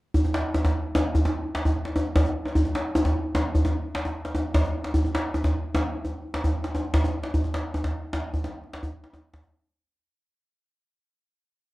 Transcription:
0.14 djembe bass
0.24 djembe tone
0.34 djembe slap
0.55 djembe slap, djembe tone
0.65 djembe slap, djembe bass
0.95 djembe slap, djembe tone
1.15 djembe slap, djembe bass
1.25 djembe slap, djembe tone
1.55 djembe slap
1.65 djembe tone, djembe bass
1.76 djembe slap
1.85 djembe slap
1.96 djembe tone
2.05 djembe slap
2.16 djembe slap, djembe bass
2.25 djembe tone
2.35 djembe slap
2.45 djembe slap
2.55 djembe bass
2.65 djembe tone
2.75 djembe slap
2.95 djembe slap, djembe tone
3.05 djembe slap, djembe bass
3.35 djembe slap, djembe tone
3.55 djembe slap, djembe bass
3.65 djembe slap, djembe tone
3.95 djembe slap
4.05 djembe tone
4.15 djembe slap
4.25 djembe slap
4.35 djembe tone
4.45 djembe slap
4.55 djembe slap, djembe bass
4.64 djembe tone
4.75 djembe slap
4.84 djembe slap
4.94 djembe bass
5.04 djembe tone
5.15 djembe slap
5.34 djembe slap, djembe tone
5.44 djembe slap, djembe bass
5.75 djembe slap, djembe tone
6.05 djembe tone
6.34 djembe slap
6.44 djembe tone, djembe bass
6.54 djembe slap
6.64 djembe slap
6.74 djembe tone
6.84 djembe slap
6.94 djembe slap, djembe bass
7.04 djembe tone
7.23 djembe slap
7.34 djembe slap, djembe bass
7.44 djembe tone
7.54 djembe slap
7.74 djembe tone
7.84 djembe slap, djembe bass
7.94 djembe slap
8.13 djembe slap, djembe tone
8.24 djembe slap
8.34 djembe slap, djembe bass
8.44 djembe slap, djembe tone
8.54 djembe slap
8.64 djembe slap
8.74 djembe slap
8.83 djembe tone, djembe bass
9.04 djembe slap
9.13 djembe tone
9.34 djembe slap, djembe bass
9.43 djembe slap, djembe tone
9.53 djembe slap

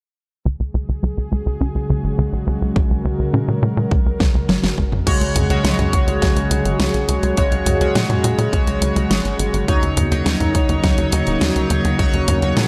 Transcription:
0.45 C#2 C#3 F#3 G#3 F#4 G#4
0.60 C#2
0.74 C#2
0.89 C#2
1.03 C#2 F#3
1.18 C#2
1.31 C#2 G#3
1.46 C#2
1.61 C#2 C#4
1.75 C#2
1.89 C#2 C#3
2.04 G#1
2.18 C#2 C#3
2.33 B1
2.47 C#2
2.62 C#2
2.76 B1 F#3 A#4, kick
2.90 C#2
3.04 C#2 G#3
3.19 C#2
3.33 A#2 C#4
3.48 A#2
3.62 A#2 C#3
3.77 A#2
3.91 C#2 C#3, kick
4.06 C#2
4.20 C#2, kick, snare
4.35 C#2
4.49 G#1 F#3, snare
4.63 G#1, snare
4.78 G#1 G#3, kick
4.92 G#1, mid tom
5.06 C#2 C#3 F#3 G#3 F#4 G#4 C#5, kick, closed hi-hat, crash
5.21 C#2, closed hi-hat
5.36 C#2, closed hi-hat, mid tom
5.50 C#2 C#3 G#3 F#4 C#5, closed hi-hat
5.64 C#2, snare, closed hi-hat
5.79 C#2, closed hi-hat, mid tom
5.93 C#2, kick, closed hi-hat
6.07 C#2, closed hi-hat
6.22 C#2, kick, snare, closed hi-hat
6.36 C#2, closed hi-hat
6.51 C#2, closed hi-hat
6.65 G#1, closed hi-hat
6.80 C#2, snare, closed hi-hat
6.94 B1, closed hi-hat
7.08 C#2, closed hi-hat
7.23 C#2, closed hi-hat
7.37 B1 C#3 G#3 F#4 C#5, kick, closed hi-hat
7.52 C#2, closed hi-hat
7.66 C#2, closed hi-hat, mid tom
7.81 C#2 C#3 G#3 F#4 C#5, closed hi-hat
7.95 A#2, snare, closed hi-hat
8.10 A#2, closed hi-hat, mid tom
8.24 A#2, closed hi-hat
8.38 A#2, closed hi-hat
8.53 C#2, kick, closed hi-hat
8.67 C#2, closed hi-hat
8.82 C#2, closed hi-hat
8.96 C#2, closed hi-hat
9.10 G#1, snare, closed hi-hat
9.25 G#1, closed hi-hat
9.39 G#1, closed hi-hat
9.54 G#1, closed hi-hat
9.68 D#2 F#3 A#3 D#4 F#4 C#5, kick, closed hi-hat
9.83 D#2, closed hi-hat
9.97 D#2, closed hi-hat, mid tom
10.11 D#2 F#3 D#4 C#5, closed hi-hat
10.26 D#2, snare, closed hi-hat
10.40 D#2, closed hi-hat, mid tom
10.55 D#2, kick, closed hi-hat
10.69 D#2, closed hi-hat
10.84 D#2, kick, snare, closed hi-hat
10.98 D#2, closed hi-hat
11.12 D#2, closed hi-hat
11.27 D#1, closed hi-hat
11.41 D#2, snare, closed hi-hat
11.56 C#2, closed hi-hat
11.70 D#2, closed hi-hat
11.85 D#2, closed hi-hat
11.99 C#2 F#3 C#4 D#4 C#5, kick, closed hi-hat
12.14 D#2, closed hi-hat
12.28 D#2, closed hi-hat, mid tom
12.42 D#2 F#3 D#4 C#5, closed hi-hat
12.57 A#2, snare, closed hi-hat

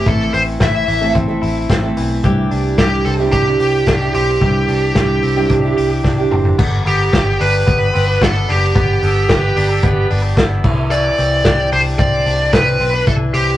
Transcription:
Already playing: C4
0.05 A1 E3 A3 C4 E4 A4, kick, closed hi-hat
0.33 A1 C4 C5, open hi-hat
0.60 A1 A3 C4 E4 A4 E5, kick, snare, closed hi-hat
0.88 A1 E3, open hi-hat
1.01 A2 E3 A3 C4 E4 A4
1.15 A1 C4, kick, closed hi-hat
1.28 A3 C4 E4 A4
1.42 A1 E4, open hi-hat
1.69 A1 C4, kick, snare, closed hi-hat
1.83 A3 C4 E4 A4
1.97 B1 E3, open hi-hat
2.23 C2 E3 G3 D4 E4 G4, kick, closed hi-hat
2.51 C2 D4, open hi-hat
2.78 C2 G3 D4 E4 G4, kick, snare, closed hi-hat
3.05 C2 C4 A4, open hi-hat
3.19 C3 G3 D4 E4 G4
3.32 C2 D4 G4, kick, closed hi-hat
3.46 D4 E4 G4
3.60 C2 G4, open hi-hat
3.86 C2 D4, kick, snare, closed hi-hat
4.01 D4 E4 G4
4.14 B1 C4 G4, open hi-hat
4.41 C2 E3 G3 D4 E4 G4, kick, closed hi-hat
4.68 C2 D4, open hi-hat
4.95 C2 G3 D4 E4 G4, kick, snare, closed hi-hat
5.23 C2 C4, open hi-hat
5.36 C3 G3 D4 E4 G4
5.50 C2 D4, kick, closed hi-hat
5.63 D4 E4 G4
5.77 C2 G4, open hi-hat
6.04 C2 D4, kick, snare
6.18 D4 E4 G4
6.31 F#1 C4, mid tom
6.45 floor tom
6.58 G1 B3, kick, crash
6.85 G1 B3 G4, open hi-hat
7.12 G1 G4, kick, snare, closed hi-hat
7.40 G1 D4 B4, open hi-hat
7.67 G1 B3, kick, closed hi-hat
7.94 G1 C4, open hi-hat
8.08 D4
8.21 G1 B3 A4, kick, snare, closed hi-hat
8.49 F#1 D4 G4, open hi-hat
8.75 G1 B3, kick, closed hi-hat
9.02 G1 B3 A4, open hi-hat
9.29 G1 G4 B4, kick, snare, closed hi-hat
9.56 G1 D4, open hi-hat
9.70 A4
9.83 G1 B3 B4, kick, closed hi-hat
10.10 G1 D4, open hi-hat
10.23 G4
10.37 G1 B3 E4, kick, snare, closed hi-hat
10.64 C2 E3, kick, crash
10.91 E3 D5, closed hi-hat
11.18 C2 C4, open hi-hat
11.45 C2 G4, kick, snare, closed hi-hat
11.72 C2 D4 C5, open hi-hat
11.99 C2 C4 D5, kick, closed hi-hat
12.26 C2 D4, open hi-hat
12.53 C2 C4 B4, kick, snare, closed hi-hat
12.80 B1 C4, open hi-hat
12.94 D4
13.07 C2 E3 A4, kick, closed hi-hat
13.34 C2 C4 G4, open hi-hat

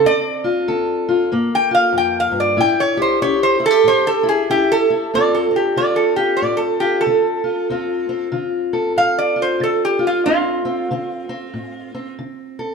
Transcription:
0.05 D2 C4 D5
0.44 F4
0.68 D3 A4
1.09 F4
1.32 G2 A#3
1.55 G5
1.71 F4 F5
1.93 F2
1.98 G5
2.20 F5
2.32 G2
2.40 D5
2.57 A2 E4 G5
2.80 C#5
2.97 G4
3.02 C5
3.22 C#4 G4 C#5
3.43 C5
3.60 E4
3.66 A4
3.70 G4
3.84 A2
3.88 C5
4.07 A4
4.23 E4
4.29 G#4
4.50 C#4 E4 G4
4.72 A4
4.90 E4
5.14 D2 C4 F4 A4 D5
5.34 A4
5.51 C4
5.56 G4
5.76 D3 F4 D5
5.96 A4
6.16 F4 G4
6.37 D5
6.42 A2
6.57 A4
6.80 F4 G4
7.01 A4
7.06 D3
7.44 F4
7.70 D2 C4 F4
8.09 C4
8.32 D3 F4
8.73 A4
8.96 A2 F5
9.18 D5
9.36 F4
9.42 C5
9.60 D3 A4
9.85 G4
9.99 F4
10.07 F4
10.26 D2 C4 F4
10.65 C4
10.91 D3 C4
11.29 C4
11.54 A2
11.95 C4
12.19 D3
12.59 A4

